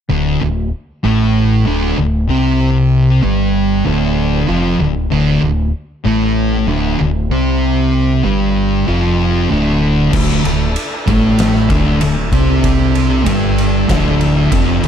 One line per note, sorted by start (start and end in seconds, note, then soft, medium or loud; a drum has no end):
0.09 0.39 D1 medium
0.09 0.40 D2 medium
0.09 0.40 D3 loud
0.41 0.70 D1 medium
0.41 0.66 D2 medium
1.03 1.63 A1 medium
1.03 1.65 A2 medium
1.03 1.66 A3 loud
1.66 1.95 D1 medium
1.66 1.96 D2 medium
1.66 1.97 D3 medium
1.97 2.27 D1 medium
1.97 2.23 D2 medium
2.28 3.19 C2 medium
2.28 3.22 C3 medium
2.28 3.22 C4 medium
3.23 3.82 G1 medium
3.23 3.85 G2 medium
3.23 3.85 G3 loud
3.85 4.45 D1 loud
3.85 4.47 D2 loud
3.85 4.47 D3 loud
4.48 4.77 F1 medium
4.48 4.78 F2 loud
4.48 4.79 F3 loud
4.79 5.09 D1 medium
4.79 5.05 D2 medium
5.11 5.40 D1 medium
5.11 5.41 D2 medium
5.11 5.42 D3 loud
5.41 5.71 D1 medium
5.41 5.67 D2 medium
6.04 6.64 A1 medium
6.04 6.67 A2 medium
6.04 6.67 A3 medium
6.67 6.97 D1 medium
6.67 6.98 D2 medium
6.67 6.98 D3 medium
7.00 7.29 D1 medium
7.00 7.25 D2 medium
7.30 8.20 C2 medium
7.30 8.24 C3 medium
7.30 8.24 C4 loud
8.24 8.84 G1 medium
8.24 8.86 G2 medium
8.24 8.87 G3 medium
8.87 9.47 F1 medium
8.87 9.49 F2 medium
8.87 9.50 F3 medium
9.51 10.09 D1 medium
9.51 10.12 D2 medium
9.51 10.13 D3 loud
10.13 10.42 D1 medium
10.13 10.43 D2 medium
10.13 10.44 D3 loud
10.13 14.88 D4 medium
10.13 14.88 A4 medium
10.13 14.88 E5 medium
10.13 kick loud
10.13 crash loud
10.44 10.74 D1 medium
10.44 10.69 D2 medium
10.44 ride medium
10.76 ride medium
11.07 11.66 A1 medium
11.07 11.69 A2 medium
11.07 11.70 A3 loud
11.07 kick loud
11.07 ride medium
11.39 snare loud
11.39 ride loud
11.56 snare soft
11.70 11.99 D1 medium
11.70 12.00 D2 loud
11.70 12.01 D3 loud
11.70 kick loud
11.70 ride medium
12.01 12.31 D1 medium
12.01 12.27 D2 medium
12.01 ride loud
12.32 13.23 C2 medium
12.32 13.25 C3 loud
12.32 13.26 C4 loud
12.32 kick loud
12.32 ride medium
12.64 kick loud
12.64 ride medium
12.95 ride medium
13.25 13.85 G1 medium
13.25 13.88 G2 medium
13.25 13.88 G3 loud
13.25 kick loud
13.25 ride loud
13.58 ride medium
13.88 14.48 D1 medium
13.88 14.51 D2 medium
13.88 14.51 D3 medium
13.88 kick loud
13.88 snare loud
13.88 ride medium
14.21 ride medium
14.52 14.81 F1 medium
14.52 14.82 F2 loud
14.52 14.83 F3 loud
14.52 kick loud
14.52 ride loud
14.84 14.88 D1 medium
14.84 14.88 D2 medium
14.84 ride medium